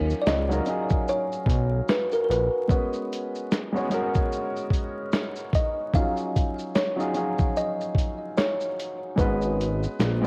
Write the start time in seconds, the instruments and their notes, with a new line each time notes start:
Already playing: analog synth bass D#2, upright piano F#3 C#4 D#4 F4 G#4, kalimba A#4
0.10 shaker
0.22 kalimba D5
0.27 analog synth bass C#2, kalimba D#5, snare, shaker
0.48 upright piano F#3 C#4 D#4 F4, shaker
0.53 upright piano A#4
0.65 upright piano F#3 C#4 D#4 F4 G#4, closed hi-hat, shaker
0.90 kick, shaker
1.08 kalimba C#5, shaker
1.32 shaker
1.46 analog synth bass B1, kick, closed hi-hat, shaker
1.89 kalimba B4, snare, shaker
2.12 kalimba A#4, shaker
2.24 kalimba A#4
2.30 analog synth bass A#1, kalimba B4, closed hi-hat, shaker
2.68 upright piano G#3 B3 C#4 F#4 B4, kick, shaker
2.93 shaker
3.13 closed hi-hat, shaker
3.35 shaker
3.52 snare, shaker
3.72 upright piano G#3 B3 C#4 F#4, shaker
3.77 upright piano C#5
3.90 upright piano G#3 B3 C#4 F#4 A#4, closed hi-hat, shaker
4.14 kick, shaker
4.32 shaker
4.57 shaker
4.70 kick, closed hi-hat, shaker
5.13 snare, shaker
5.36 shaker
5.53 kalimba D#5, kick, closed hi-hat, shaker
5.93 upright piano F3 C#4 D#4 F4 G#4, kalimba F5, kick, shaker
5.99 upright piano F#3
6.17 shaker
6.36 kick, closed hi-hat, shaker
6.59 shaker
6.76 kalimba C#5, snare, shaker
6.96 upright piano F#3 C#4 D#4 F4, shaker
7.00 upright piano G#4
7.13 upright piano F3 C#4 D#4 F4 G#4, closed hi-hat, shaker
7.20 upright piano F#3
7.39 kick, shaker
7.57 kalimba D#5, shaker
7.81 shaker
7.95 kick, closed hi-hat, shaker
8.38 kalimba C#5, snare, shaker
8.61 shaker
8.80 closed hi-hat, shaker
9.16 analog synth bass G#1, upright piano G#3 B3 C#4 F#4 B4, kalimba B4, kick, shaker
9.42 shaker
9.61 closed hi-hat, shaker
9.83 shaker
10.00 analog synth bass A#1, snare, shaker
10.22 upright piano G#3 B3 C#4